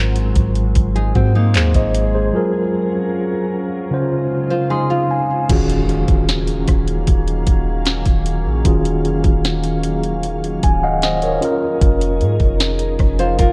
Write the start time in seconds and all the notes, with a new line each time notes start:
Already playing: G#1 G#2 F#3 G#3 C4 F4 A#4 C5
0.16 closed hi-hat
0.36 G#1 G#4, kick, closed hi-hat
0.56 closed hi-hat
0.75 G#1, kick, closed hi-hat
0.96 D#4 G#4, closed hi-hat
1.15 G#2 C4 F#4, kick, closed hi-hat
1.35 A#3 D#4
1.54 D#2 G#4 C5, clap, closed hi-hat
1.74 G#1 C5 D#5, kick, closed hi-hat
1.94 closed hi-hat
2.15 G#4 C5
2.33 F#3 C#4 F4 G#4 A#4
3.91 C#3 G#3 C#4 D#4 F4 C5
4.51 F4 C5
4.70 D#4 G#4 C6
4.90 C4 F4
5.11 G#5
5.48 D#1 D#3 F#3 A#3 C#4 F4 F#4 G#4 F5, kick, closed hi-hat, crash, impact
5.69 closed hi-hat
5.89 closed hi-hat
6.08 D#1, kick, closed hi-hat
6.29 snare, closed hi-hat
6.47 closed hi-hat
6.67 D#1, kick, cross-stick, closed hi-hat
6.87 closed hi-hat
7.07 D#1, kick, closed hi-hat
7.28 closed hi-hat
7.47 D#1, kick, closed hi-hat
7.86 snare, closed hi-hat
8.06 D#1, kick, closed hi-hat
8.26 closed hi-hat
8.45 A#1
8.64 D#1 D#3 C#4 F4 F#4 G#4, kick, closed hi-hat
8.85 closed hi-hat
9.05 F1, closed hi-hat
9.24 D#1, kick, closed hi-hat
9.45 snare, closed hi-hat
9.64 closed hi-hat
9.83 closed hi-hat
10.03 closed hi-hat
10.23 closed hi-hat
10.44 closed hi-hat
10.63 C#1 G#5, kick, closed hi-hat
10.83 D#5 F5 F#5
11.02 C5 D#5, snare, closed hi-hat
11.22 A#4 C#5, closed hi-hat
11.41 F3 C#4 D#4 F4 G#4 A#4, closed hi-hat
11.81 F1, kick, closed hi-hat
12.01 closed hi-hat
12.21 G#2, closed hi-hat
12.40 F1, kick, closed hi-hat
12.60 snare, closed hi-hat
12.79 closed hi-hat
12.99 F1 C5, kick, cross-stick, closed hi-hat
13.19 F4 C5, closed hi-hat
13.39 F1 F4 A#4, kick, closed hi-hat